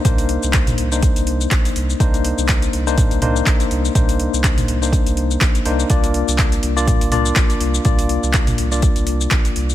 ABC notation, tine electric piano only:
X:1
M:4/4
L:1/16
Q:"Swing 16ths" 1/4=123
K:Cm
V:1 name="Tine electric piano"
[B,DEc]6- [B,DEc] [B,DEc]8- [B,DEc] | [B,DEc]6- [B,DEc] [B,DEc]3 [B,DEc]6 | [B,DEc]6- [B,DEc] [B,DEc]6- [B,DEc] [B,DEc]2 | [B,DFd]6- [B,DFd] [B,DFd]3 [B,DFd]6 |
[B,DFd]6- [B,DFd] [B,DFd]8- [B,DFd] |]